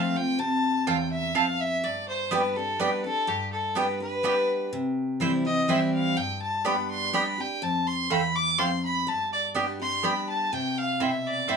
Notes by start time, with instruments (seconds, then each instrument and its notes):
Already playing: steel-string acoustic guitar F3 A3 C4 F4, fiddle F5
0.16 steel-string acoustic guitar C4 F4, fiddle G5
0.39 steel-string acoustic guitar C3, fiddle A5
0.87 steel-string acoustic guitar E2, mandolin C4 F4 C5 A5, fiddle G5
1.11 fiddle E5
1.34 steel-string acoustic guitar F2, mandolin C4 F4 C5 A5, fiddle F5
1.60 fiddle E5
1.84 steel-string acoustic guitar G2, fiddle D5
2.08 fiddle C5
2.31 steel-string acoustic guitar G3 B3 D4 G4, mandolin B3 G4 D5 G5, fiddle B4
2.56 steel-string acoustic guitar D4 G4, fiddle A4
2.79 steel-string acoustic guitar G3 B3 D4 G4, mandolin B3 G4 D5 G5, fiddle B4
3.04 steel-string acoustic guitar D4 G4, fiddle A4
3.27 steel-string acoustic guitar G2, fiddle G4
3.52 fiddle A4
3.75 steel-string acoustic guitar G3 B3 D4 G4, mandolin B3 G4 D5 G5, fiddle B4
4.00 steel-string acoustic guitar D4 G4, fiddle B4
4.23 steel-string acoustic guitar G3 B3 D4 G4, mandolin B3 G4 D5 G5
4.73 steel-string acoustic guitar C3
5.20 steel-string acoustic guitar E3 G3 C4 E4, mandolin C4 E4 C5 G5
5.45 steel-string acoustic guitar C4 E4, fiddle D#5
5.68 steel-string acoustic guitar E3 G3 C4 E4, mandolin C4 E4 C5 G5, fiddle E5
5.94 fiddle F5
6.16 steel-string acoustic guitar G2, fiddle G5
6.42 fiddle A5
6.65 steel-string acoustic guitar G3 B3 D4 G4, mandolin B3 G4 D5 G5, fiddle B5
6.91 fiddle C6
7.13 steel-string acoustic guitar G3 B3 D4 G4, mandolin B3 G4 D5 G5, fiddle B5
7.38 steel-string acoustic guitar D4 G4, fiddle G5
7.62 steel-string acoustic guitar F2, fiddle A5
7.87 fiddle C6
8.10 steel-string acoustic guitar E2, mandolin A3 F4 C5 G5, fiddle B5
8.35 fiddle D6
8.58 steel-string acoustic guitar F2, mandolin A3 F4 C5 G5, fiddle C6
8.85 fiddle B5
9.07 steel-string acoustic guitar G2, fiddle A5
9.33 fiddle D5
9.54 steel-string acoustic guitar G3 B3 D4 G4, mandolin B3 G4 D5 G5
9.80 steel-string acoustic guitar D4 G4, fiddle C6
10.03 steel-string acoustic guitar G3 B3 D4 G4, mandolin B3 G4 D5 G5, fiddle B5
10.29 fiddle A5
10.53 steel-string acoustic guitar C3, fiddle G5
10.78 fiddle F5
11.00 steel-string acoustic guitar B2, mandolin C4 E4 C5 G5, fiddle E5
11.27 fiddle D5
11.48 steel-string acoustic guitar A2, mandolin C4 E4 C5 G5, fiddle E5